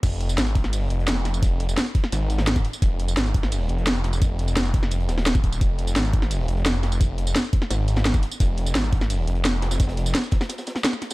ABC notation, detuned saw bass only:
X:1
M:4/4
L:1/8
Q:1/4=172
K:Ebmix
V:1 name="Detuned saw bass" clef=bass
F,,,2 A,,,3 F,,,3 | F,,,2 z2 A,,,3 z | F,,,2 A,,,3 F,,,3 | F,,,2 F,,,3 E,,,3 |
F,,,2 A,,,3 F,,,3 | F,,,2 z2 A,,,3 z | F,,,2 A,,,3 F,,,3 | F,,,2 z6 |]